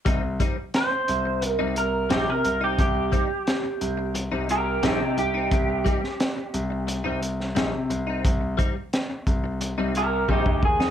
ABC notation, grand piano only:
X:1
M:4/4
L:1/16
Q:1/4=88
K:Cm
V:1 name="Grand piano" clef=bass
C,,2 z4 C,,3 C,,3 B,,, C, C,,2 | C,,2 z4 C,,3 C,,3 B,,, C, C,,2 | C,,2 z4 C,,3 C,,3 B,,, C, C,,2 | C,,2 z4 C,,3 C,,3 B,,, D,, E,, F,, |]